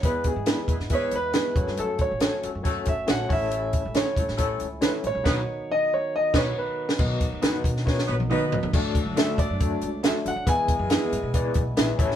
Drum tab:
CC |----------------|----------------|----------------|x---------x-----|
HH |x-x-x-x-x-x-x-x-|x-x-x-x-x-x-x-o-|x-x-x-x-x-x-x-x-|----------------|
SD |----o--o----o--o|----o-------o---|----o--o----o---|o---------o----o|
T1 |----------------|----------------|----------------|----------------|
T2 |----------------|----------------|----------------|----------------|
FT |----------------|----------------|----------------|----------------|
BD |o-o---o-o-----o-|--o-----o-o---o-|--o---o-o-------|o---------o-----|

CC |x---------------|x---------------|----------------|
HH |--x-x-x---------|--x-x-x-x-x-x-x-|x-x-x-x-x-x-x-x-|
SD |----o--ooo------|----o-------o---|----o-------o--o|
T1 |-----------o----|----------------|----------------|
T2 |------------o---|----------------|----------------|
FT |--------------oo|----------------|----------------|
BD |o-o---o-o-------|o-o---o-o-------|o-o-----o-o---o-|